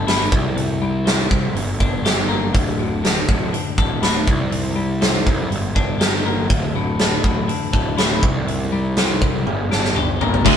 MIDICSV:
0, 0, Header, 1, 5, 480
1, 0, Start_track
1, 0, Tempo, 494641
1, 551, Time_signature, 4, 2, 24, 8
1, 10254, End_track
2, 0, Start_track
2, 0, Title_t, "Clean electric guitar"
2, 0, Program_c, 0, 27
2, 0, Note_on_c, 0, 45, 59
2, 0, Note_on_c, 0, 50, 62
2, 0, Note_on_c, 0, 57, 58
2, 0, Note_on_c, 0, 62, 55
2, 70, Note_on_c, 0, 64, 67
2, 99, Note_off_c, 0, 62, 0
2, 311, Note_off_c, 0, 64, 0
2, 311, Note_on_c, 0, 48, 63
2, 312, Note_off_c, 0, 45, 0
2, 312, Note_off_c, 0, 50, 0
2, 312, Note_off_c, 0, 57, 0
2, 534, Note_off_c, 0, 48, 0
2, 546, Note_on_c, 0, 48, 68
2, 793, Note_on_c, 0, 55, 67
2, 1023, Note_on_c, 0, 60, 58
2, 1254, Note_off_c, 0, 55, 0
2, 1265, Note_on_c, 0, 55, 54
2, 1506, Note_off_c, 0, 48, 0
2, 1506, Note_off_c, 0, 60, 0
2, 1507, Note_off_c, 0, 55, 0
2, 1510, Note_on_c, 0, 43, 52
2, 1747, Note_on_c, 0, 62, 55
2, 1989, Note_on_c, 0, 67, 69
2, 2220, Note_on_c, 0, 58, 64
2, 2453, Note_off_c, 0, 43, 0
2, 2457, Note_on_c, 0, 38, 71
2, 2464, Note_off_c, 0, 58, 0
2, 2468, Note_off_c, 0, 67, 0
2, 2710, Note_on_c, 0, 45, 59
2, 2947, Note_on_c, 0, 50, 59
2, 3179, Note_off_c, 0, 45, 0
2, 3191, Note_on_c, 0, 45, 59
2, 3418, Note_off_c, 0, 50, 0
2, 3430, Note_on_c, 0, 50, 60
2, 3661, Note_off_c, 0, 38, 0
2, 3671, Note_on_c, 0, 57, 60
2, 3905, Note_on_c, 0, 64, 69
2, 3934, Note_off_c, 0, 62, 0
2, 4140, Note_on_c, 0, 48, 67
2, 4146, Note_off_c, 0, 64, 0
2, 4148, Note_off_c, 0, 45, 0
2, 4148, Note_off_c, 0, 50, 0
2, 4149, Note_off_c, 0, 57, 0
2, 4369, Note_off_c, 0, 48, 0
2, 4381, Note_on_c, 0, 48, 68
2, 4616, Note_on_c, 0, 55, 61
2, 4863, Note_on_c, 0, 60, 63
2, 5094, Note_off_c, 0, 55, 0
2, 5105, Note_on_c, 0, 55, 51
2, 5343, Note_off_c, 0, 48, 0
2, 5344, Note_off_c, 0, 60, 0
2, 5346, Note_off_c, 0, 55, 0
2, 5349, Note_on_c, 0, 43, 59
2, 5584, Note_on_c, 0, 62, 54
2, 5825, Note_on_c, 0, 67, 67
2, 6074, Note_on_c, 0, 58, 70
2, 6304, Note_off_c, 0, 43, 0
2, 6306, Note_off_c, 0, 67, 0
2, 6308, Note_on_c, 0, 38, 72
2, 6310, Note_off_c, 0, 58, 0
2, 6555, Note_on_c, 0, 45, 69
2, 6789, Note_on_c, 0, 50, 62
2, 7009, Note_off_c, 0, 45, 0
2, 7021, Note_on_c, 0, 45, 61
2, 7250, Note_off_c, 0, 50, 0
2, 7261, Note_on_c, 0, 50, 65
2, 7499, Note_on_c, 0, 57, 58
2, 7508, Note_off_c, 0, 38, 0
2, 7739, Note_on_c, 0, 64, 72
2, 7769, Note_off_c, 0, 62, 0
2, 7976, Note_on_c, 0, 48, 63
2, 7984, Note_off_c, 0, 57, 0
2, 7984, Note_off_c, 0, 64, 0
2, 7985, Note_off_c, 0, 45, 0
2, 7985, Note_off_c, 0, 50, 0
2, 8213, Note_off_c, 0, 48, 0
2, 8225, Note_on_c, 0, 48, 63
2, 8463, Note_on_c, 0, 55, 65
2, 8712, Note_on_c, 0, 60, 61
2, 8930, Note_off_c, 0, 55, 0
2, 8942, Note_on_c, 0, 55, 54
2, 9174, Note_off_c, 0, 48, 0
2, 9177, Note_on_c, 0, 43, 56
2, 9186, Note_off_c, 0, 55, 0
2, 9191, Note_off_c, 0, 60, 0
2, 9426, Note_on_c, 0, 62, 52
2, 9666, Note_on_c, 0, 67, 74
2, 9906, Note_on_c, 0, 58, 59
2, 10144, Note_off_c, 0, 43, 0
2, 10148, Note_off_c, 0, 58, 0
2, 10148, Note_off_c, 0, 62, 0
2, 10148, Note_off_c, 0, 67, 0
2, 10254, End_track
3, 0, Start_track
3, 0, Title_t, "Overdriven electric guitar"
3, 0, Program_c, 1, 29
3, 10140, Note_on_c, 1, 38, 88
3, 10149, Note_on_c, 1, 45, 89
3, 10154, Note_on_c, 1, 50, 104
3, 10254, Note_off_c, 1, 38, 0
3, 10254, Note_off_c, 1, 45, 0
3, 10254, Note_off_c, 1, 50, 0
3, 10254, End_track
4, 0, Start_track
4, 0, Title_t, "Picked electric bass"
4, 0, Program_c, 2, 34
4, 0, Note_on_c, 2, 31, 76
4, 279, Note_off_c, 2, 31, 0
4, 309, Note_on_c, 2, 36, 76
4, 1229, Note_off_c, 2, 36, 0
4, 1269, Note_on_c, 2, 36, 73
4, 1491, Note_off_c, 2, 36, 0
4, 1509, Note_on_c, 2, 31, 87
4, 1731, Note_off_c, 2, 31, 0
4, 1749, Note_on_c, 2, 31, 70
4, 2429, Note_off_c, 2, 31, 0
4, 2468, Note_on_c, 2, 26, 87
4, 3148, Note_off_c, 2, 26, 0
4, 3188, Note_on_c, 2, 26, 81
4, 3410, Note_off_c, 2, 26, 0
4, 3666, Note_on_c, 2, 26, 66
4, 4110, Note_off_c, 2, 26, 0
4, 4147, Note_on_c, 2, 36, 72
4, 5068, Note_off_c, 2, 36, 0
4, 5108, Note_on_c, 2, 36, 77
4, 5329, Note_off_c, 2, 36, 0
4, 5345, Note_on_c, 2, 31, 85
4, 5568, Note_off_c, 2, 31, 0
4, 5589, Note_on_c, 2, 31, 84
4, 6269, Note_off_c, 2, 31, 0
4, 6308, Note_on_c, 2, 26, 86
4, 6989, Note_off_c, 2, 26, 0
4, 7024, Note_on_c, 2, 26, 88
4, 7248, Note_off_c, 2, 26, 0
4, 7508, Note_on_c, 2, 26, 74
4, 7952, Note_off_c, 2, 26, 0
4, 7983, Note_on_c, 2, 36, 81
4, 8908, Note_off_c, 2, 36, 0
4, 8939, Note_on_c, 2, 36, 74
4, 9166, Note_off_c, 2, 36, 0
4, 9176, Note_on_c, 2, 31, 82
4, 9404, Note_off_c, 2, 31, 0
4, 9425, Note_on_c, 2, 31, 81
4, 10109, Note_off_c, 2, 31, 0
4, 10146, Note_on_c, 2, 26, 81
4, 10254, Note_off_c, 2, 26, 0
4, 10254, End_track
5, 0, Start_track
5, 0, Title_t, "Drums"
5, 77, Note_on_c, 9, 46, 46
5, 82, Note_on_c, 9, 38, 96
5, 174, Note_off_c, 9, 46, 0
5, 180, Note_off_c, 9, 38, 0
5, 312, Note_on_c, 9, 36, 96
5, 409, Note_off_c, 9, 36, 0
5, 557, Note_on_c, 9, 46, 38
5, 654, Note_off_c, 9, 46, 0
5, 1036, Note_on_c, 9, 46, 42
5, 1042, Note_on_c, 9, 38, 89
5, 1133, Note_off_c, 9, 46, 0
5, 1139, Note_off_c, 9, 38, 0
5, 1271, Note_on_c, 9, 36, 78
5, 1368, Note_off_c, 9, 36, 0
5, 1518, Note_on_c, 9, 46, 41
5, 1615, Note_off_c, 9, 46, 0
5, 1751, Note_on_c, 9, 36, 73
5, 1848, Note_off_c, 9, 36, 0
5, 1993, Note_on_c, 9, 46, 41
5, 1999, Note_on_c, 9, 38, 94
5, 2090, Note_off_c, 9, 46, 0
5, 2096, Note_off_c, 9, 38, 0
5, 2470, Note_on_c, 9, 36, 85
5, 2475, Note_on_c, 9, 46, 39
5, 2567, Note_off_c, 9, 36, 0
5, 2573, Note_off_c, 9, 46, 0
5, 2955, Note_on_c, 9, 46, 43
5, 2960, Note_on_c, 9, 38, 90
5, 3052, Note_off_c, 9, 46, 0
5, 3057, Note_off_c, 9, 38, 0
5, 3189, Note_on_c, 9, 36, 77
5, 3286, Note_off_c, 9, 36, 0
5, 3433, Note_on_c, 9, 46, 41
5, 3530, Note_off_c, 9, 46, 0
5, 3668, Note_on_c, 9, 36, 77
5, 3765, Note_off_c, 9, 36, 0
5, 3907, Note_on_c, 9, 46, 44
5, 3913, Note_on_c, 9, 38, 92
5, 4004, Note_off_c, 9, 46, 0
5, 4010, Note_off_c, 9, 38, 0
5, 4149, Note_on_c, 9, 36, 81
5, 4246, Note_off_c, 9, 36, 0
5, 4387, Note_on_c, 9, 46, 42
5, 4484, Note_off_c, 9, 46, 0
5, 4868, Note_on_c, 9, 46, 42
5, 4874, Note_on_c, 9, 38, 93
5, 4965, Note_off_c, 9, 46, 0
5, 4971, Note_off_c, 9, 38, 0
5, 5110, Note_on_c, 9, 36, 70
5, 5207, Note_off_c, 9, 36, 0
5, 5355, Note_on_c, 9, 46, 38
5, 5452, Note_off_c, 9, 46, 0
5, 5589, Note_on_c, 9, 36, 68
5, 5686, Note_off_c, 9, 36, 0
5, 5828, Note_on_c, 9, 46, 42
5, 5833, Note_on_c, 9, 38, 96
5, 5925, Note_off_c, 9, 46, 0
5, 5931, Note_off_c, 9, 38, 0
5, 6307, Note_on_c, 9, 46, 35
5, 6308, Note_on_c, 9, 36, 89
5, 6404, Note_off_c, 9, 46, 0
5, 6405, Note_off_c, 9, 36, 0
5, 6785, Note_on_c, 9, 46, 39
5, 6791, Note_on_c, 9, 38, 93
5, 6882, Note_off_c, 9, 46, 0
5, 6888, Note_off_c, 9, 38, 0
5, 7027, Note_on_c, 9, 36, 73
5, 7124, Note_off_c, 9, 36, 0
5, 7269, Note_on_c, 9, 46, 41
5, 7366, Note_off_c, 9, 46, 0
5, 7505, Note_on_c, 9, 36, 70
5, 7603, Note_off_c, 9, 36, 0
5, 7745, Note_on_c, 9, 46, 44
5, 7751, Note_on_c, 9, 38, 93
5, 7842, Note_off_c, 9, 46, 0
5, 7848, Note_off_c, 9, 38, 0
5, 7985, Note_on_c, 9, 36, 88
5, 8082, Note_off_c, 9, 36, 0
5, 8231, Note_on_c, 9, 46, 39
5, 8328, Note_off_c, 9, 46, 0
5, 8700, Note_on_c, 9, 46, 41
5, 8706, Note_on_c, 9, 38, 88
5, 8797, Note_off_c, 9, 46, 0
5, 8803, Note_off_c, 9, 38, 0
5, 8944, Note_on_c, 9, 36, 76
5, 9042, Note_off_c, 9, 36, 0
5, 9188, Note_on_c, 9, 48, 48
5, 9285, Note_off_c, 9, 48, 0
5, 9431, Note_on_c, 9, 38, 61
5, 9528, Note_off_c, 9, 38, 0
5, 9556, Note_on_c, 9, 38, 54
5, 9653, Note_off_c, 9, 38, 0
5, 9667, Note_on_c, 9, 45, 66
5, 9764, Note_off_c, 9, 45, 0
5, 9910, Note_on_c, 9, 43, 75
5, 10007, Note_off_c, 9, 43, 0
5, 10033, Note_on_c, 9, 43, 70
5, 10130, Note_off_c, 9, 43, 0
5, 10148, Note_on_c, 9, 36, 94
5, 10151, Note_on_c, 9, 49, 106
5, 10151, Note_on_c, 9, 57, 67
5, 10245, Note_off_c, 9, 36, 0
5, 10248, Note_off_c, 9, 49, 0
5, 10248, Note_off_c, 9, 57, 0
5, 10254, End_track
0, 0, End_of_file